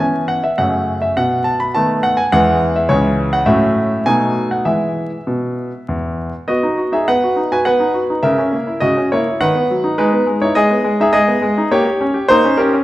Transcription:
grand piano
0.00 E3 B3 C#4 G#5
0.28 F#5
0.44 E5
0.58 F#2 C#3 A3 C#4 F#5
1.02 E5
1.17 B2 F#5
1.44 A5
1.60 B5
1.75 D#3 A3 B3 A5
2.03 F#5
2.17 G#5
2.32 E2 E3 G#3 B3 F#5
2.76 E5
2.89 C#2 E3 G#3 C#4 C#5
3.33 F#5
3.46 A2 F#3 A3 C#4 E5
4.06 B2 F#3 A3 D#4 G#5
4.51 F#5
4.65 E3 G#3 E4 E5
5.27 B2
5.89 E2
6.48 B3 F#4 D#5
6.63 D#4
6.78 F#4
6.92 D#4 G#4 E5
7.08 B3 B4 F#5
7.24 F#4
7.36 D#4
7.52 F#4 B4 G#5
7.65 B3 B4 F#5
7.80 D#4
7.94 F#4
8.10 D#4
8.23 C#3 A#4 E5
8.38 C#4
8.52 A#3
8.67 E4
8.80 C#3 F#4 D#5
8.97 C#4
9.12 A#3 E4 C#5
9.27 E4
9.41 D#3 B4 F#5
9.55 B3
9.70 F#3
9.84 D#4
9.98 G#3 D#4 B4
10.13 B3
10.27 G#3
10.41 D#4 E4 C#5
10.55 G#3 G#4 D#5
10.71 B3
10.84 G#3
11.00 D#4 G#4 E5
11.13 G#3 G#4 D#5
11.28 B3
11.42 G#3
11.58 D#4
11.71 A#3 G4 C#5
11.85 G4
12.01 C#4
12.14 G4
12.28 A#3 D#4 C5
12.45 C#4
12.57 C#4 G4 A#4
12.74 C#4

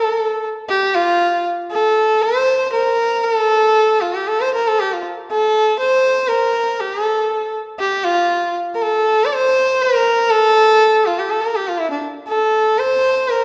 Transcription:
sarangi
Already playing: A4
0.69 G4
0.95 F4
1.71 A4
2.23 C5
2.72 A#4
3.25 A4
4.01 F4
4.14 G4
4.27 A4
4.40 C5
4.54 A#4
4.68 A4
4.80 G4
4.93 F4
5.31 A4
5.79 C5
6.28 A#4
6.80 G4
7.03 A4
7.80 G4
8.04 F4
8.74 A#4
8.82 A4
9.25 D5
9.33 C5
9.82 A#4
10.30 A4
11.07 F4
11.19 G4
11.30 A4
11.42 A#4
11.56 G4
11.68 F4
11.78 E4
11.91 D4
12.28 A4
12.78 C5
13.29 A#4

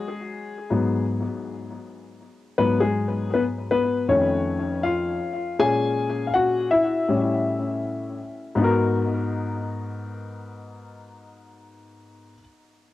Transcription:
grand piano
Already playing: G#3 G#4
0.70 G#2 F#3 B3
2.58 G#2 F#3 B3 B4
2.80 G#3 G#4
3.34 B3 B4
3.71 B3 B4
4.08 F2 D#3 A3 C#4 C#5
4.83 F4 F5
5.59 A#2 G#3 C#4 G#4 G#5
6.27 F5
6.34 F#4 F#5
6.71 E4 E5
7.09 A2 G3 C#4
8.55 G#2 B3
8.59 D#4 F#4
8.64 A#4

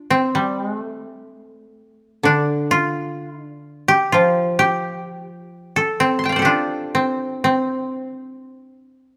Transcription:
koto
Already playing: D4 F4
0.10 C4
0.35 G3
0.60 G#3
0.76 A3
2.23 D3 D4
2.71 F4
3.48 D4
3.88 G4
4.12 F3 F4
4.59 G4
5.76 A4
6.00 C4
6.19 C6
6.24 G5 A5
6.29 D5 F5
6.36 A4 C5
6.42 D4 F4 G4
6.95 C4
7.44 C4

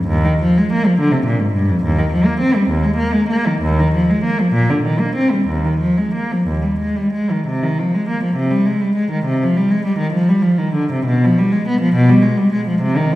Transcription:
cello
0.07 D#2
0.25 D#3
0.42 F3
0.58 G#3
0.72 A#3
0.86 F3
0.99 D3
1.12 C3
1.26 A#2
1.39 G#2
1.53 G2
1.70 F2
1.84 D#2
1.99 D#3
2.12 F3
2.26 A#3
2.40 C4
2.56 G3
2.69 D#2
2.83 G#3
2.97 A#3
3.12 G#3
3.29 A#3
3.47 D#3
3.62 D#2
3.80 D#3
3.94 F3
4.10 G#3
4.24 A#3
4.40 F3
4.54 A#2
4.70 D3
4.85 D#3
4.99 A#3
5.15 C4
5.32 G3
5.48 D#2
5.65 D#3
5.80 F3
5.98 G#3
6.14 A#3
6.32 F3
6.48 D#2
6.63 G3
6.79 G#3
6.96 G3
7.13 G#3
7.31 D#3
7.47 C3
7.63 D#3
7.79 F3
7.94 G#3
8.09 A#3
8.24 F3
8.36 C3
8.51 G3
8.66 G#3
8.81 G3
8.96 G#3
9.11 D#3
9.25 C3
9.43 F3
9.57 G3
9.71 G#3
9.85 G3
9.99 D#3
10.13 F3
10.29 G3
10.42 F3
10.59 D#3
10.74 D3
10.93 C3
11.06 B2
11.24 F3
11.39 G3
11.52 G#3
11.68 B3
11.81 F3
11.95 B2
12.09 G3
12.22 G#3
12.37 G3
12.53 G#3
12.67 F3
12.82 C3
12.97 D#3
13.12 F3

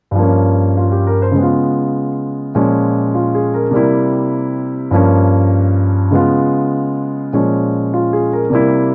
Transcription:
grand piano
0.11 G2
0.15 F3 A#3
0.22 C#4
0.77 F4
0.92 G4
1.07 A#4
1.22 C5
1.32 C#3 G#3
1.39 B3
1.43 F4
2.55 A#2 F3 G#3 C#4
3.15 F4
3.35 G#4
3.54 A#4
3.71 C3 G3 A#3
3.76 E4
4.91 G2 F3 A#3
4.95 C#4
6.11 C#3 G#3 B3
6.15 F4
7.33 A#2 F3 G#3 C#4
7.94 F4
8.13 G#4
8.33 A#4
8.50 C3 G3 A#3
8.55 E4

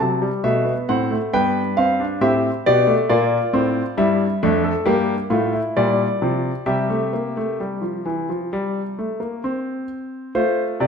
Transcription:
grand piano
Already playing: F#4
0.00 C3 F#3 A5
0.22 G3
0.44 B2 A3 E5
0.65 B3
0.89 A2 C4 F#5
1.11 A3
1.33 G2 B3 B4 G5
1.77 C4 F5
2.00 D4
2.21 A2 C4 G4 E5
2.66 B2 B3 G4 D5
2.87 A3
3.09 A#2 A#3 F4 D5
3.53 A2 C4
3.97 G2 G3 E4 E5
4.43 F2 A3 D4
4.64 A4
4.86 G2 A#3 G4
5.30 A2 A3 F4
5.53 E4
5.77 A#2 G3 D5
6.22 C3 F3
6.66 C3 G3 G4 E5
6.90 A3
7.13 A#3
7.37 A3
7.60 G3
7.81 F3
8.06 E3
8.29 F3
8.53 G3
8.99 A3
9.20 A#3
9.44 C4
10.35 A3 F4 C5
10.80 C3 D5

